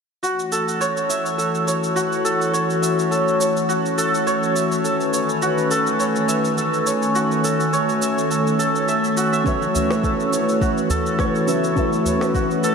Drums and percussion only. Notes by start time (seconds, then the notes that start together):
0.24 shaker
0.39 shaker
0.52 shaker
0.68 shaker
0.81 shaker
0.97 shaker
1.10 shaker
1.26 shaker
1.39 shaker
1.55 shaker
1.68 shaker
1.84 shaker
1.97 shaker
2.12 shaker
2.26 shaker
2.42 shaker
2.54 shaker
2.70 shaker
2.83 shaker
2.99 shaker
3.12 shaker
3.28 shaker
3.41 shaker
3.57 shaker
3.70 shaker
3.86 shaker
3.98 shaker
4.14 shaker
4.27 shaker
4.43 shaker
4.56 shaker
4.72 shaker
4.85 shaker
5.01 shaker
5.14 shaker
5.29 shaker
5.42 shaker
5.58 shaker
5.71 shaker
5.87 shaker
6.00 shaker
6.16 shaker
6.29 shaker
6.45 shaker
6.58 shaker
6.74 shaker
6.87 shaker
7.03 shaker
7.16 shaker
7.31 shaker
7.44 shaker
7.60 shaker
7.73 shaker
7.89 shaker
8.02 shaker
8.18 shaker
8.31 shaker
8.47 shaker
8.60 shaker
8.76 shaker
8.88 shaker
9.04 shaker
9.17 shaker
9.33 shaker
9.46 kick, shaker
9.62 shaker
9.75 udu, shaker
9.91 snare, shaker
10.04 kick, shaker
10.20 shaker
10.33 shaker
10.49 shaker
10.61 kick, shaker
10.78 shaker
10.90 udu, shaker
11.06 shaker
11.19 kick, snare, shaker
11.35 shaker
11.48 shaker
11.64 shaker
11.77 kick, shaker
11.93 shaker
12.06 udu, shaker
12.21 snare, shaker
12.35 kick, shaker
12.51 shaker
12.64 shaker